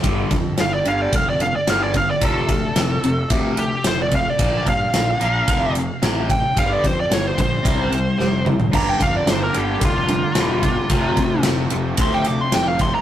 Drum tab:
CC |----------------|----------------|----------------|----------------|
RD |x-x-x-x-x-x-x-x-|x-x-x-x-x-x-x-x-|x-x-x-x-x-x-x-x-|x-x-x-x-x-x-----|
SD |----o-------o---|----o-------o---|----o-------o---|----o-------o---|
T2 |----------------|----------------|----------------|--------------o-|
FT |----------------|----------------|----------------|---------------o|
BD |o-o-----o-----o-|o-o-----o-----o-|o-o-----o-----o-|o-o---o-o-------|

CC |x---------------|----------------|
RD |--x-x-x-x-x-x-x-|x-x-x-x-x-x-x-x-|
SD |----o-------o---|----o----o--o---|
T2 |----------------|----------------|
FT |----------------|----------------|
BD |o-o-----o-----o-|o-o-----o-----o-|